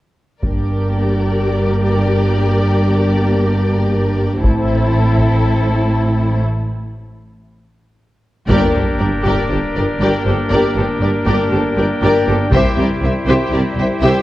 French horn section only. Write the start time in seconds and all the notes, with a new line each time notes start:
0.44 A#3 D4
4.44 C4 E4
8.51 A#3 D4
12.53 G3 E4